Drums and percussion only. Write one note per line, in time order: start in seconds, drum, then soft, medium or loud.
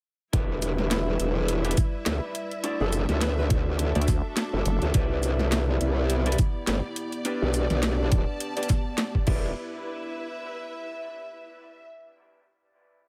0.33 kick loud
0.33 closed hi-hat medium
0.62 closed hi-hat medium
0.62 shaker medium
0.78 snare medium
0.91 snare loud
0.91 closed hi-hat medium
1.20 closed hi-hat medium
1.48 closed hi-hat medium
1.65 closed hi-hat soft
1.71 closed hi-hat medium
1.77 kick loud
1.77 closed hi-hat medium
1.77 shaker medium
2.06 snare loud
2.06 closed hi-hat medium
2.35 closed hi-hat medium
2.51 closed hi-hat soft
2.64 closed hi-hat medium
2.92 closed hi-hat medium
2.92 shaker medium
3.09 snare medium
3.09 closed hi-hat soft
3.21 snare loud
3.21 closed hi-hat medium
3.50 kick loud
3.50 closed hi-hat medium
3.79 closed hi-hat medium
3.95 closed hi-hat soft
4.01 closed hi-hat medium
4.08 kick loud
4.08 snare soft
4.08 closed hi-hat medium
4.08 shaker medium
4.37 snare loud
4.37 closed hi-hat medium
4.66 closed hi-hat medium
4.82 closed hi-hat soft
4.94 kick loud
4.94 closed hi-hat medium
5.23 closed hi-hat medium
5.23 shaker medium
5.39 snare medium
5.52 snare loud
5.52 closed hi-hat medium
5.81 closed hi-hat medium
6.10 closed hi-hat medium
6.26 closed hi-hat medium
6.32 closed hi-hat medium
6.38 kick loud
6.38 closed hi-hat medium
6.38 shaker medium
6.67 snare loud
6.67 closed hi-hat medium
6.96 closed hi-hat medium
7.12 closed hi-hat soft
7.25 closed hi-hat medium
7.54 closed hi-hat medium
7.54 shaker medium
7.70 snare medium
7.70 closed hi-hat soft
7.83 snare loud
7.83 closed hi-hat medium
8.12 kick loud
8.12 closed hi-hat medium
8.40 closed hi-hat medium
8.57 closed hi-hat soft
8.63 closed hi-hat medium
8.69 kick loud
8.69 snare soft
8.69 closed hi-hat medium
8.69 shaker medium
8.98 snare loud
8.98 closed hi-hat medium
9.15 kick medium
9.27 kick loud
9.27 crash medium